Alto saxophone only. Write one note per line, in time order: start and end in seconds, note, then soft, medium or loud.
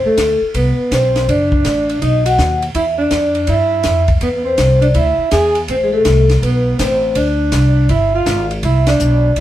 0.05 0.39 A3 medium
0.57 0.90 B3 medium
0.93 1.27 C4 medium
1.29 1.98 D4 medium
2.02 2.24 D#4 medium
2.26 2.60 F#4 medium
2.75 2.86 E4 medium
2.98 3.45 D4 medium
3.49 4.05 E4 medium
4.23 4.29 B3 medium
4.36 4.44 B3 medium
4.44 4.79 C4 medium
4.81 4.87 D4 medium
4.95 5.29 E4 medium
5.32 5.60 G#4 medium
5.70 5.76 C4 medium
5.84 5.92 G#3 medium
5.93 6.27 A3 medium
6.43 6.77 B3 medium
6.79 7.13 C4 medium
7.16 7.86 D4 medium
7.90 8.12 E4 medium
8.15 8.48 F4 medium
8.65 8.86 E4 medium
8.88 9.34 D4 medium